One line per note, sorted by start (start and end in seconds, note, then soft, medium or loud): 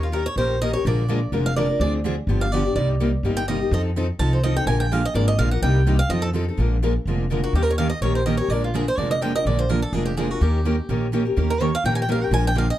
0.00 0.27 D#2 medium
0.00 0.13 F4 medium
0.12 0.22 D#3 medium
0.12 0.22 A#3 medium
0.12 0.23 C#4 medium
0.12 0.23 G4 loud
0.12 0.25 A#4 medium
0.12 0.23 A#4 loud
0.26 0.36 C#5 loud
0.36 0.74 A#1 medium
0.36 0.55 D#3 medium
0.36 0.55 A#3 medium
0.36 0.55 C#4 medium
0.36 0.55 G4 medium
0.36 0.55 A#4 medium
0.36 0.59 C5 medium
0.62 0.71 D#3 medium
0.62 0.71 A#3 medium
0.62 0.71 C#4 medium
0.62 0.71 G4 medium
0.62 0.71 A#4 medium
0.62 0.73 D#5 loud
0.73 0.85 C#4 soft
0.73 0.85 G4 medium
0.73 0.84 A#4 medium
0.73 0.84 C#5 medium
0.85 1.23 A#1 loud
0.85 1.03 D3 medium
0.85 1.02 F3 medium
0.85 1.02 G#3 medium
0.85 1.03 A#3 medium
0.85 1.03 D4 medium
0.85 1.03 F4 medium
0.85 1.03 G#4 medium
0.85 1.03 A#4 medium
0.85 1.30 D5 medium
1.08 1.18 D3 medium
1.08 1.18 F3 medium
1.08 1.19 G#3 loud
1.08 1.18 A#3 loud
1.08 1.19 D4 medium
1.08 1.19 F4 loud
1.08 1.19 G#4 loud
1.08 1.19 A#4 loud
1.32 1.70 F1 medium
1.32 1.50 D3 medium
1.32 1.50 F3 medium
1.32 1.50 G#3 medium
1.32 1.50 A#3 medium
1.32 1.50 D4 medium
1.32 1.50 F4 medium
1.32 1.50 G#4 medium
1.32 1.50 A#4 medium
1.46 1.56 F5 medium
1.56 1.66 D3 medium
1.56 1.66 F3 medium
1.56 1.66 G#3 medium
1.56 1.66 A#3 loud
1.56 1.66 D4 medium
1.56 1.67 F4 medium
1.56 1.67 G#4 loud
1.56 1.67 A#4 loud
1.56 1.79 D5 medium
1.70 1.80 D4 soft
1.70 1.80 F4 medium
1.70 1.80 A#4 medium
1.80 2.18 D2 medium
1.80 1.98 D3 medium
1.80 1.98 F3 medium
1.80 1.98 C4 medium
1.80 1.98 D4 medium
1.80 1.99 G#4 medium
1.80 1.93 D5 medium
2.05 2.14 D3 medium
2.05 2.14 F3 medium
2.05 2.14 C4 medium
2.05 2.15 D4 loud
2.05 2.15 G#4 loud
2.27 2.66 G1 medium
2.27 2.46 D3 medium
2.27 2.46 F3 medium
2.27 2.46 B3 medium
2.27 2.46 D4 medium
2.27 2.46 G4 medium
2.41 2.52 F5 loud
2.52 2.62 D3 medium
2.52 2.62 F3 medium
2.52 2.62 B3 medium
2.52 2.62 D4 medium
2.52 2.62 G4 medium
2.52 2.74 D5 medium
2.65 2.76 B3 medium
2.65 2.76 D4 medium
2.65 2.75 G4 medium
2.76 3.14 C2 medium
2.76 2.94 C3 medium
2.76 2.94 G3 medium
2.76 2.94 A#3 medium
2.76 2.94 D#4 medium
2.76 2.94 G4 medium
2.76 2.88 D5 medium
3.00 3.10 C3 medium
3.00 3.10 G3 medium
3.00 3.10 A#3 medium
3.00 3.10 D#4 medium
3.00 3.10 G4 loud
3.23 3.62 G1 medium
3.23 3.42 C3 medium
3.23 3.42 G3 medium
3.23 3.42 A#3 medium
3.23 3.42 D#4 medium
3.23 3.42 G4 medium
3.37 3.47 G5 loud
3.48 3.58 C3 medium
3.48 3.58 G3 medium
3.48 3.58 A#3 medium
3.48 3.58 D#4 medium
3.48 3.58 G4 medium
3.48 3.70 D#5 medium
3.61 3.72 A#3 soft
3.61 3.72 D#4 medium
3.61 3.71 G4 medium
3.71 4.10 F2 loud
3.71 3.89 F3 medium
3.71 3.89 C4 medium
3.71 3.90 D#4 medium
3.71 3.90 A4 medium
3.71 3.81 D#5 medium
3.97 4.06 F3 medium
3.97 4.06 C4 medium
3.97 4.06 D#4 loud
3.97 4.06 A4 medium
4.19 4.57 C2 medium
4.19 4.37 F3 medium
4.19 4.38 C4 medium
4.19 4.38 D#4 medium
4.19 4.38 A4 medium
4.19 4.32 A5 medium
4.33 4.43 C5 medium
4.43 4.53 F3 medium
4.43 4.54 C4 medium
4.43 4.54 D#4 medium
4.43 4.54 A4 medium
4.43 4.56 D#5 loud
4.56 4.67 C4 medium
4.56 4.67 D#4 medium
4.56 4.67 A4 medium
4.56 4.67 G5 loud
4.67 5.05 A#1 loud
4.67 4.85 D3 medium
4.67 4.85 F3 medium
4.67 4.85 G#3 medium
4.67 4.85 A#3 medium
4.67 4.85 D4 medium
4.67 4.85 F4 medium
4.67 4.86 G#4 medium
4.67 4.85 A#4 medium
4.67 4.79 G#5 loud
4.80 4.93 G5 loud
4.91 5.01 D3 medium
4.91 5.01 F3 medium
4.91 5.01 G#3 medium
4.91 5.01 A#3 medium
4.91 5.01 D4 loud
4.91 5.01 F4 medium
4.91 5.02 G#4 loud
4.91 5.01 A#4 loud
4.91 5.04 F5 medium
5.05 5.15 D#5 loud
5.14 5.35 G#1 medium
5.14 5.33 D3 medium
5.14 5.32 F3 medium
5.14 5.32 G#3 medium
5.14 5.33 A#3 medium
5.14 5.32 D4 medium
5.14 5.32 F4 medium
5.14 5.33 G#4 medium
5.14 5.32 A#4 medium
5.14 5.27 D5 medium
5.28 5.38 D#5 loud
5.38 5.59 A#1 medium
5.38 5.49 D3 medium
5.38 5.48 F3 medium
5.38 5.48 G#3 medium
5.38 5.49 A#3 loud
5.38 5.49 D4 medium
5.38 5.49 F4 loud
5.38 5.49 G#4 medium
5.38 5.49 A#4 medium
5.38 5.51 F5 loud
5.51 5.62 D4 medium
5.51 5.62 F4 medium
5.51 5.62 A#4 medium
5.51 5.62 F#5 medium
5.62 6.01 C2 loud
5.62 5.80 C3 medium
5.62 5.80 G3 medium
5.62 5.80 A#3 medium
5.62 5.80 D#4 medium
5.62 5.80 G4 medium
5.62 5.97 G5 loud
5.86 5.96 C3 medium
5.86 5.97 G3 medium
5.86 5.97 A#3 loud
5.86 5.97 D#4 loud
5.86 5.97 G4 medium
5.99 6.10 F5 loud
6.09 6.48 F2 medium
6.09 6.28 F3 medium
6.09 6.28 C4 medium
6.09 6.28 D#4 medium
6.09 6.29 A4 medium
6.09 6.23 D#5 loud
6.22 6.29 A4 loud
6.34 6.44 F3 medium
6.34 6.44 C4 medium
6.34 6.45 D#4 medium
6.34 6.45 A4 loud
6.48 6.59 C4 medium
6.48 6.59 D#4 medium
6.48 6.58 A4 medium
6.57 6.96 A#1 medium
6.57 6.75 D3 medium
6.57 6.76 F3 medium
6.57 6.76 G#3 medium
6.57 6.76 A#3 medium
6.57 6.77 D4 medium
6.57 6.77 F4 medium
6.57 6.76 G#4 medium
6.57 6.77 A#4 medium
6.83 6.92 D3 medium
6.83 6.92 F3 medium
6.83 6.92 G#3 medium
6.83 6.93 A#3 medium
6.83 6.92 D4 medium
6.83 6.92 F4 medium
6.83 6.93 G#4 medium
6.83 6.93 A#4 medium
7.05 7.44 F1 medium
7.05 7.24 D3 medium
7.05 7.24 F3 medium
7.05 7.24 G#3 medium
7.05 7.25 A#3 medium
7.05 7.25 D4 medium
7.05 7.25 F4 medium
7.05 7.25 G#4 medium
7.05 7.25 A#4 medium
7.30 7.40 D3 medium
7.30 7.40 F3 medium
7.30 7.40 G#3 medium
7.30 7.41 A#3 medium
7.30 7.40 D4 medium
7.30 7.40 F4 medium
7.30 7.41 G#4 medium
7.30 7.40 A#4 medium
7.43 7.55 D4 medium
7.43 7.54 F4 medium
7.43 7.54 F#4 medium
7.43 7.54 A#4 medium
7.53 7.92 D#2 medium
7.53 7.72 D#3 medium
7.53 7.72 A#3 medium
7.53 7.72 C#4 medium
7.53 7.62 G4 medium
7.53 7.73 G4 medium
7.53 7.72 A#4 medium
7.62 7.70 A#4 medium
7.70 7.78 C#5 medium
7.78 7.88 D#3 medium
7.78 7.88 A#3 medium
7.78 7.88 C#4 medium
7.78 7.88 G4 medium
7.78 7.88 A#4 medium
7.78 7.89 F5 loud
7.90 8.01 D#5 loud
8.01 8.40 A#1 medium
8.01 8.20 D#3 medium
8.01 8.20 A#3 medium
8.01 8.20 C#4 medium
8.01 8.20 G4 medium
8.01 8.20 A#4 medium
8.01 8.14 C#5 medium
8.15 8.25 C5 medium
8.26 8.36 D#3 medium
8.26 8.36 A#3 medium
8.26 8.36 C#4 medium
8.26 8.36 G4 medium
8.26 8.36 A#4 medium
8.26 8.37 D#5 medium
8.37 8.50 G4 medium
8.37 8.50 A#4 medium
8.37 8.50 C#5 medium
8.41 8.51 C#4 medium
8.48 8.87 A#1 medium
8.48 8.67 D3 medium
8.48 8.68 F3 medium
8.48 8.68 G#3 medium
8.48 8.67 A#3 medium
8.48 8.68 D4 medium
8.48 8.68 F4 medium
8.48 8.68 G#4 medium
8.48 8.68 A#4 medium
8.48 8.62 D5 medium
8.64 8.74 F4 soft
8.74 8.83 D3 loud
8.74 8.84 F3 medium
8.74 8.84 G#3 medium
8.74 8.84 A#3 loud
8.74 8.84 D4 medium
8.74 8.84 F4 medium
8.74 8.84 G#4 loud
8.74 8.87 G#4 medium
8.74 8.84 A#4 medium
8.88 8.98 C5 medium
8.97 9.36 F1 medium
8.97 9.15 D3 medium
8.97 9.15 F3 medium
8.97 9.16 G#3 medium
8.97 9.15 A#3 medium
8.97 9.16 D4 medium
8.97 9.16 F4 medium
8.97 9.15 G#4 medium
8.97 9.16 A#4 medium
8.97 9.10 D5 medium
9.11 9.21 D#5 loud
9.21 9.31 D3 loud
9.21 9.31 F3 medium
9.21 9.31 G#3 medium
9.21 9.31 A#3 medium
9.21 9.32 D4 medium
9.21 9.31 F4 medium
9.21 9.32 G#4 loud
9.21 9.32 A#4 medium
9.21 9.34 G5 loud
9.35 9.45 D4 soft
9.35 9.45 F4 medium
9.35 9.45 A#4 medium
9.35 9.46 D#5 loud
9.45 9.83 A#1 medium
9.45 9.63 D3 medium
9.45 9.63 F3 medium
9.45 9.63 G#3 medium
9.45 9.63 A#3 medium
9.45 9.63 D4 medium
9.45 9.63 F4 medium
9.45 9.63 G#4 medium
9.45 9.64 A#4 medium
9.45 9.59 D5 medium
9.59 9.69 C5 medium
9.69 9.79 D3 loud
9.69 9.79 F3 medium
9.69 9.79 G#3 medium
9.69 9.79 A#3 loud
9.69 9.79 D4 loud
9.69 9.79 F4 medium
9.69 9.79 G#4 loud
9.69 9.82 A#4 medium
9.69 9.79 A#4 medium
9.82 9.93 A4 medium
9.93 10.31 F1 medium
9.93 10.10 D3 medium
9.93 10.11 F3 medium
9.93 10.11 G#3 medium
9.93 10.11 A#3 medium
9.93 10.11 D4 medium
9.93 10.11 F4 medium
9.93 10.05 G#4 medium
9.93 10.11 G#4 medium
9.93 10.11 A#4 medium
10.05 10.16 G4 medium
10.17 10.26 D3 medium
10.17 10.27 F3 medium
10.17 10.27 G#3 medium
10.17 10.27 A#3 medium
10.17 10.27 D4 loud
10.17 10.28 F4 medium
10.17 10.31 G#4 medium
10.17 10.27 G#4 medium
10.17 10.28 A#4 medium
10.30 10.42 D4 medium
10.30 10.41 F4 medium
10.30 10.43 F#4 medium
10.30 10.41 A#4 medium
10.41 10.79 D#2 loud
10.41 10.59 D#3 medium
10.41 10.59 A#3 medium
10.41 10.59 C#4 medium
10.41 10.59 G4 medium
10.41 10.90 G4 medium
10.41 10.59 A#4 medium
10.65 10.74 D#3 medium
10.65 10.75 A#3 medium
10.65 10.75 C#4 medium
10.65 10.75 G4 medium
10.65 10.75 A#4 medium
10.89 11.27 A#1 medium
10.89 11.07 D#3 medium
10.89 11.07 A#3 medium
10.89 11.07 C#4 medium
10.89 11.07 G4 medium
10.89 11.07 A#4 medium
11.13 11.22 D#3 medium
11.13 11.23 A#3 medium
11.13 11.22 C#4 loud
11.13 11.23 G4 medium
11.13 11.23 A#4 medium
11.25 11.36 C#4 soft
11.25 11.36 G4 medium
11.25 11.36 A#4 medium
11.36 11.75 D#2 medium
11.36 11.54 D#3 medium
11.36 11.54 A#3 medium
11.36 11.54 C#4 medium
11.36 11.54 G4 medium
11.36 11.54 A#4 medium
11.50 11.61 A#4 loud
11.60 11.70 D#3 medium
11.60 11.70 A#3 medium
11.60 11.70 C#4 medium
11.60 11.70 G4 medium
11.60 11.70 A#4 medium
11.60 11.73 C#5 medium
11.75 11.85 F5 loud
11.84 12.22 A#1 medium
11.84 12.02 D#3 medium
11.84 12.02 A#3 medium
11.84 12.02 C#4 medium
11.84 12.02 G4 medium
11.84 12.02 A#4 medium
11.84 11.93 G5 loud
11.95 12.01 G#5 loud
12.02 12.09 G5 medium
12.09 12.18 D#3 medium
12.09 12.18 A#3 medium
12.09 12.18 C#4 loud
12.09 12.18 G4 medium
12.09 12.18 A#4 loud
12.09 12.24 F5 medium
12.21 12.32 C#4 soft
12.21 12.32 G4 medium
12.21 12.31 A#4 medium
12.21 12.33 G5 medium
12.31 12.70 A#1 loud
12.31 12.49 D3 medium
12.31 12.49 F3 medium
12.31 12.50 G#3 medium
12.31 12.49 A#3 medium
12.31 12.50 D4 medium
12.31 12.50 F4 medium
12.31 12.50 G#4 medium
12.31 12.50 A#4 medium
12.31 12.45 G#5 loud
12.47 12.57 G5 loud
12.55 12.65 D3 medium
12.55 12.65 F3 medium
12.55 12.65 G#3 medium
12.55 12.65 A#3 medium
12.55 12.65 D4 medium
12.55 12.66 F4 medium
12.55 12.66 G#4 loud
12.55 12.66 A#4 loud
12.55 12.70 F5 medium
12.70 12.79 D#5 loud